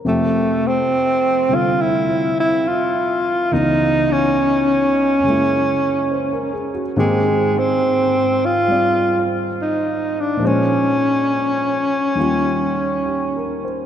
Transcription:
Already playing: grand piano A#4
0.05 grand piano F2 C3 F3 A3 G4, alto saxophone A3
0.67 alto saxophone C4
1.49 grand piano C3 D3 G3 A4
1.55 alto saxophone F4
1.81 alto saxophone E4
2.40 alto saxophone E4
2.68 alto saxophone F4
3.52 grand piano C#2 C#3 E3 B3 D#4, alto saxophone D#4
4.12 alto saxophone C#4
5.20 grand piano F#2 C#3
5.25 grand piano G#3 A#3
5.30 grand piano E4
6.11 grand piano C5
6.32 grand piano A#4
6.53 grand piano G#4
6.75 grand piano F#4
6.96 grand piano G#2 D#3 A#3 C4 G4, alto saxophone G#3
7.58 alto saxophone C4
8.45 alto saxophone F4
8.68 grand piano G3 C4 D5
9.62 alto saxophone D#4
10.20 alto saxophone D4
10.37 grand piano A#2 F3
10.42 grand piano G#3 C5, alto saxophone C#4
10.47 grand piano C#4
12.15 grand piano D#2 D#3 G3 C#4
12.20 grand piano F4
13.06 grand piano G4
13.36 grand piano A#4
13.65 grand piano C5

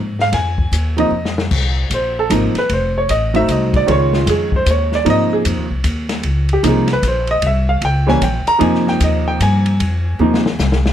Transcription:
Already playing: upright bass G#2
0.19 grand piano F5, snare
0.32 upright bass F2, grand piano G#5, kick, snare, ride
0.58 kick
0.72 upright bass D#2, kick, hi-hat pedal, ride
0.96 grand piano C3 F3 A#3 D#4 D#5, ride
1.10 upright bass F2
1.25 snare
1.38 snare
1.51 upright bass C2, kick, crash
1.90 upright bass A#1, kick, hi-hat pedal, ride
1.94 grand piano C5
2.19 grand piano A4
2.29 upright bass G#1, grand piano C3 F3 A#3 D#4, kick, hi-hat pedal, ride
2.34 grand piano A#4
2.54 muted upright bass stroke, snare, ride
2.58 grand piano B4
2.69 upright bass F1, grand piano C5, kick, ride
2.98 grand piano C#5
3.09 upright bass A1, grand piano D#5, kick, hi-hat pedal, ride
3.34 grand piano F#3 A3 C4 D#4 E5, ride
3.48 upright bass C2, grand piano D#5, kick, hi-hat pedal, ride
3.74 grand piano D5, kick, ride
3.87 upright bass C#2, grand piano D#3 G#3 C#4 F4, kick, ride
3.91 grand piano C#5
4.13 grand piano F4, snare
4.26 upright bass F2, grand piano G#4, kick, snare, hi-hat pedal, ride
4.52 grand piano C5, kick
4.66 upright bass D#2, kick, hi-hat pedal, ride
4.71 grand piano C#5
4.92 grand piano D5, snare
5.05 upright bass G#2, grand piano C3 F3 A#3 D#4, kick, ride
5.10 grand piano D#5
5.33 grand piano G#4
5.45 upright bass F2, kick, hi-hat pedal, ride
5.57 upright bass D#2
5.70 upright bass C2
5.84 upright bass D#2, kick, hi-hat pedal, ride
6.09 snare, ride
6.23 upright bass C#2, kick, ride
6.49 ride
6.53 grand piano G4
6.63 upright bass C2, grand piano C3 F3 A#3 D#4 G4, kick, hi-hat pedal, ride
6.68 grand piano G#4
6.88 snare, ride
6.93 grand piano B4
7.02 upright bass A#1, kick, hi-hat pedal, ride
7.08 grand piano C5
7.27 grand piano D#5, ride
7.42 upright bass C2, kick, ride
7.47 grand piano E5
7.69 grand piano F5
7.81 upright bass C#2, grand piano G5, kick, ride
8.07 grand piano E3 G3 A#3 C#4 G#5, snare
8.21 upright bass A#1, grand piano G5, kick, hi-hat pedal, ride
8.46 grand piano A#5, muted upright bass stroke, ride
8.58 upright bass F2, grand piano C3 F3 A#3 D#4 G#5, kick, ride
8.74 snare
8.87 grand piano G5, snare
9.00 upright bass D#2, grand piano D#5, kick, hi-hat pedal, ride
9.28 grand piano G5
9.40 upright bass G2, grand piano G#5, kick, hi-hat pedal, ride
9.66 ride
9.80 upright bass F2, kick, ride
10.19 upright bass D#2, grand piano C3 F3 A#3 D#4
10.34 snare
10.46 snare
10.59 upright bass C2, snare, hi-hat pedal
10.72 snare
10.86 snare

